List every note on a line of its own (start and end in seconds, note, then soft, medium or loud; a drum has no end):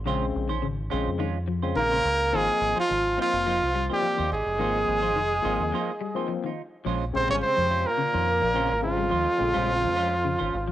0.06 0.33 A#1 medium
0.06 0.22 C#3 medium
0.06 0.48 C#3 loud
0.06 0.24 G#3 medium
0.06 0.48 G#3 medium
0.06 0.48 C4 loud
0.06 0.24 C#4 medium
0.06 0.25 F4 medium
0.06 0.25 C5 medium
0.35 0.65 A#1 medium
0.49 0.57 D#3 medium
0.49 0.67 C#4 medium
0.49 0.66 C5 medium
0.62 0.91 G#1 loud
0.62 0.79 C#3 medium
0.90 1.07 A#1 loud
0.90 1.25 C#3 medium
0.90 1.09 G#3 medium
0.90 1.26 G#3 medium
0.90 1.25 C4 medium
0.90 1.09 C#4 medium
0.90 1.09 F4 medium
0.90 1.09 C5 medium
1.07 1.73 F2 medium
1.19 1.36 D#3 medium
1.19 1.37 G#3 medium
1.19 1.38 C#4 medium
1.19 1.38 F4 medium
1.19 muted clean electric guitar stroke medium
1.48 1.64 F3 medium
1.62 1.96 C#3 medium
1.62 1.96 G#3 medium
1.62 1.96 C4 medium
1.62 1.80 C#4 soft
1.62 1.79 F4 soft
1.62 1.79 C5 medium
1.76 2.03 A#1 loud
1.76 1.85 D#3 medium
1.76 2.39 A#3 medium
1.76 2.38 A#4 loud
1.91 2.08 C#3 medium
1.91 2.08 C#4 soft
1.91 2.08 F4 medium
1.91 2.08 C5 medium
2.05 2.31 C#2 medium
2.33 2.48 G#1 loud
2.33 2.49 D#3 medium
2.33 2.74 F3 medium
2.33 2.74 A#3 medium
2.33 2.74 C4 loud
2.33 2.51 D#4 medium
2.33 2.51 F4 medium
2.33 2.78 G#4 loud
2.33 2.51 C5 medium
2.33 muted clean electric guitar stroke medium
2.38 2.79 G#3 medium
2.61 2.76 G#1 medium
2.76 2.84 F3 medium
2.76 3.17 F3 medium
2.76 2.93 D#4 soft
2.76 2.93 F4 soft
2.76 3.17 F4 loud
2.76 2.92 C5 medium
2.89 3.17 G#1 medium
2.89 3.06 D#3 medium
3.17 3.51 F3 medium
3.17 3.87 F3 medium
3.17 3.52 A#3 medium
3.17 3.52 C4 medium
3.17 3.36 D#4 medium
3.17 3.36 F4 medium
3.17 3.36 C5 medium
3.17 muted clean electric guitar stroke medium
3.22 3.88 F4 loud
3.33 3.60 F1 medium
3.46 3.62 F3 medium
3.46 3.64 A#3 medium
3.46 3.64 D#4 medium
3.46 3.64 F4 medium
3.46 3.64 C5 medium
3.62 3.88 C2 medium
3.75 3.91 G3 medium
3.90 4.23 F3 medium
3.90 4.30 G3 medium
3.90 4.23 A#3 medium
3.90 4.23 C4 medium
3.90 4.06 D#4 soft
3.90 4.06 F4 soft
3.90 4.30 G4 medium
3.90 4.06 C5 medium
4.02 4.11 F3 medium
4.17 4.31 D#2 medium
4.17 4.34 D#3 medium
4.17 4.35 D#4 soft
4.17 4.35 F4 soft
4.17 4.34 C5 medium
4.32 4.46 G#1 loud
4.32 6.27 G#3 medium
4.32 6.26 G#4 medium
4.46 4.59 F1 medium
4.58 4.85 G#1 medium
4.58 4.75 D#3 medium
4.58 5.00 F3 medium
4.58 4.77 A#3 medium
4.58 5.00 A#3 medium
4.58 5.00 C4 medium
4.58 4.77 D#4 medium
4.58 4.78 F4 medium
4.58 4.78 C5 medium
4.88 5.16 G#1 medium
5.02 5.10 F3 medium
5.02 5.19 D#4 soft
5.02 5.19 F4 medium
5.02 5.19 C5 medium
5.16 5.42 F1 medium
5.16 5.32 D#3 medium
5.43 5.59 G#1 loud
5.43 5.77 F3 medium
5.43 5.77 A#3 medium
5.43 5.62 A#3 medium
5.43 5.77 C4 medium
5.43 5.62 D#4 medium
5.43 5.62 F4 medium
5.43 5.62 C5 medium
5.59 5.72 D#2 medium
5.72 5.89 F3 medium
5.72 5.91 A#3 medium
5.72 5.91 D#4 medium
5.72 5.91 F4 medium
5.72 5.91 C5 medium
6.01 6.17 G3 medium
6.15 6.48 F3 medium
6.15 6.49 A#3 medium
6.15 6.49 C4 loud
6.15 6.33 D#4 soft
6.15 6.32 F4 soft
6.15 6.32 C5 medium
6.28 6.37 F3 medium
6.44 6.60 D#3 medium
6.44 6.61 D#4 soft
6.44 6.61 F4 soft
6.85 7.12 A#1 medium
6.85 7.01 F3 medium
6.85 7.04 G#3 medium
6.85 7.04 C#4 medium
6.85 7.04 F4 medium
6.85 7.04 C5 medium
7.13 7.29 A#1 medium
7.13 7.28 C3 medium
7.13 7.67 C#3 medium
7.13 7.67 G#3 medium
7.13 7.67 C4 medium
7.13 7.29 C5 medium
7.18 7.30 C4 medium
7.29 7.41 G#1 medium
7.29 7.35 C#3 medium
7.29 7.45 G3 medium
7.29 7.45 C#4 soft
7.29 7.45 F4 soft
7.29 7.45 C5 medium
7.29 7.36 C#5 loud
7.34 7.39 C#4 medium
7.42 7.83 C3 medium
7.42 7.88 C5 loud
7.47 7.92 C4 medium
7.57 7.84 F2 medium
7.57 7.73 F3 medium
7.70 7.88 G#3 medium
7.70 7.88 C#4 medium
7.70 7.88 F4 medium
7.70 7.89 C5 medium
7.87 8.84 A#2 loud
7.87 8.85 A#3 medium
7.87 8.83 A#4 medium
7.98 8.07 C#3 medium
8.13 8.41 F2 loud
8.13 8.30 D#3 medium
8.13 8.30 C#4 soft
8.13 8.30 F4 soft
8.13 8.30 C5 medium
8.41 8.69 A#1 medium
8.41 8.58 F3 medium
8.54 8.69 C#3 medium
8.54 8.69 G#3 medium
8.54 8.73 G#3 medium
8.54 8.69 C4 medium
8.54 8.73 C#4 medium
8.54 8.73 F4 medium
8.54 8.73 C5 medium
8.71 9.09 G#1 medium
8.82 10.72 F2 medium
8.82 9.10 C#3 medium
8.82 10.72 F3 medium
8.82 9.09 G#3 medium
8.82 9.09 C4 medium
8.82 10.72 F4 medium
8.97 9.05 G3 medium
9.10 9.26 D#2 medium
9.10 9.27 F3 medium
9.10 9.29 G#3 medium
9.10 9.29 F4 medium
9.10 9.29 C5 medium
9.10 muted clean electric guitar stroke medium
9.38 9.54 A#1 medium
9.38 9.92 C#3 medium
9.38 9.93 G#3 medium
9.38 9.92 C4 medium
9.54 9.85 A#1 medium
9.54 9.70 G3 medium
9.54 9.71 C#4 medium
9.54 9.71 F4 medium
9.54 9.70 C5 medium
9.82 10.36 F2 medium
9.82 9.98 F3 medium
9.96 10.14 G#3 medium
9.96 10.14 C#4 medium
9.96 10.14 F4 medium
9.96 10.14 C5 medium
10.24 10.33 C#3 medium
10.39 10.52 G#1 medium
10.39 10.56 D#3 medium
10.39 10.55 C#4 soft
10.39 10.55 F4 medium
10.39 10.55 C5 medium
10.54 10.72 G#1 loud
10.68 10.72 F3 medium